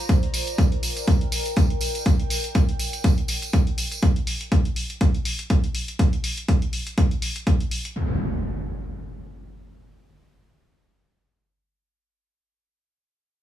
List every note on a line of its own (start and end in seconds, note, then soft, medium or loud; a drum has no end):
0.00 4.03 F4 medium
0.00 1.57 C5 medium
0.00 4.03 D5 medium
0.00 1.39 A#5 medium
0.09 kick loud
0.09 closed hi-hat soft
0.09 tambourine soft
0.16 4.03 A#4 medium
0.23 closed hi-hat soft
0.34 open hi-hat loud
0.34 tambourine loud
0.45 3.89 G5 medium
0.45 closed hi-hat soft
0.45 tambourine soft
0.58 kick loud
0.58 closed hi-hat soft
0.58 tambourine soft
0.72 closed hi-hat soft
0.83 open hi-hat loud
0.83 tambourine medium
0.97 closed hi-hat soft
0.97 tambourine medium
1.08 kick loud
1.08 closed hi-hat soft
1.08 tambourine soft
1.21 closed hi-hat soft
1.32 open hi-hat loud
1.32 tambourine medium
1.45 closed hi-hat soft
1.45 tambourine medium
1.56 kick loud
1.56 closed hi-hat medium
1.56 tambourine soft
1.70 closed hi-hat soft
1.81 open hi-hat loud
1.81 tambourine loud
1.95 closed hi-hat soft
1.95 tambourine soft
2.06 kick loud
2.06 closed hi-hat soft
2.06 tambourine soft
2.20 closed hi-hat soft
2.30 open hi-hat loud
2.30 tambourine medium
2.44 closed hi-hat medium
2.44 tambourine soft
2.55 kick loud
2.55 closed hi-hat medium
2.55 tambourine soft
2.69 closed hi-hat soft
2.79 open hi-hat medium
2.79 tambourine medium
2.93 closed hi-hat medium
2.93 tambourine soft
3.04 kick loud
3.04 closed hi-hat medium
3.04 tambourine soft
3.18 closed hi-hat soft
3.28 open hi-hat loud
3.28 tambourine medium
3.42 closed hi-hat soft
3.42 tambourine medium
3.53 kick loud
3.53 closed hi-hat medium
3.53 tambourine soft
3.67 closed hi-hat soft
3.78 open hi-hat loud
3.78 tambourine medium
3.90 4.03 A5 medium
3.90 closed hi-hat soft
3.90 tambourine soft
4.03 kick loud
4.03 closed hi-hat soft
4.16 closed hi-hat soft
4.27 open hi-hat loud
4.41 closed hi-hat medium
4.52 kick loud
4.52 closed hi-hat soft
4.65 closed hi-hat soft
4.76 open hi-hat medium
4.90 closed hi-hat soft
5.01 kick loud
5.01 closed hi-hat medium
5.15 closed hi-hat soft
5.25 open hi-hat loud
5.39 closed hi-hat medium
5.50 kick loud
5.50 closed hi-hat medium
5.64 closed hi-hat soft
5.75 open hi-hat loud
5.88 closed hi-hat medium
5.99 kick loud
5.99 closed hi-hat medium
6.13 closed hi-hat soft
6.24 open hi-hat loud
6.37 closed hi-hat medium
6.48 kick loud
6.48 closed hi-hat medium
6.62 closed hi-hat soft
6.73 open hi-hat medium
6.87 closed hi-hat medium
6.98 kick loud
6.98 closed hi-hat medium
7.11 closed hi-hat soft
7.22 open hi-hat loud
7.36 closed hi-hat medium
7.47 kick loud
7.47 closed hi-hat medium
7.60 closed hi-hat soft
7.71 open hi-hat medium
7.85 closed hi-hat medium
7.96 impact medium